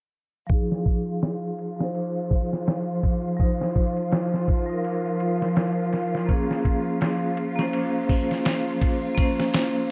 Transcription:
0.47 vibraphone F3 D#4, synth texture F3 F4, string section F4, kick, ride
0.51 string section F3, vibraphone G#4
0.72 snare
0.86 kick, ride
1.22 snare, ride
1.59 ride
1.76 vibraphone F3 D#4, snare
1.83 vibraphone C5
1.95 ride
2.31 kick, open hi-hat
2.53 snare
2.67 snare, ride
3.03 kick, ride
3.37 vibraphone F3 D#4, kick, ride
3.43 vibraphone C5
3.61 snare
3.76 kick, ride
3.97 ride
4.12 snare, ride
4.34 snare
4.48 kick, ride
4.66 vibraphone F3 D#4
4.73 vibraphone A#4
4.84 ride
5.20 ride
5.42 snare
5.56 snare, ride
5.93 snare, ride
6.15 snare
6.26 vibraphone A#3 C#4, kick, ride
6.32 vibraphone G#4
6.51 snare
6.65 kick, ride
7.01 snare, ride
7.37 ride
7.56 vibraphone A#3 C#4, snare
7.62 vibraphone C5
7.73 ride
8.09 kick, open hi-hat
8.31 snare
8.45 snare, ride
8.81 kick, ride
9.15 vibraphone A#3 C#4, kick, ride
9.21 vibraphone C5
9.40 snare
9.54 snare, ride

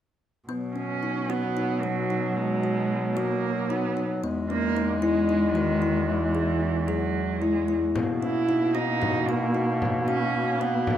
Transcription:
0.48 cello B2, clarinet F#3, kalimba B3
0.75 cello C#4, kalimba C#4
1.03 kalimba D#4
1.29 cello B3, kalimba F#4
1.57 kalimba D#4
1.82 cello F#3, kalimba F#4
2.10 kalimba D#4
2.36 cello G#3
2.63 kalimba F#4
3.15 cello A#3, kalimba F#4
3.69 cello B3, kalimba D#4
3.97 kalimba D#4
4.23 cello E2, clarinet G#3, kalimba B3
4.49 cello A#3, kalimba C#4
4.77 kalimba D#4
5.02 cello G#3, kalimba E4
5.29 kalimba D#4
5.55 cello D#3, kalimba F#4
5.82 kalimba E4
6.08 cello E3
6.35 kalimba G#4
6.87 cello F#3, kalimba G#4
7.41 cello G#3, kalimba E4
7.68 kalimba E4
7.95 cello B2, clarinet A#3, kalimba B3, frame drum
8.21 kalimba C#4, cello E4, frame drum
8.49 kalimba D#4, frame drum
8.75 cello D#4, kalimba F#4, frame drum
9.02 kalimba D#4, frame drum
9.28 cello A#3, kalimba F#4, frame drum
9.54 kalimba D#4
9.82 frame drum
10.07 cello C#4, kalimba F#4, frame drum
10.35 frame drum
10.60 cello B3, kalimba F#4, frame drum
10.87 frame drum

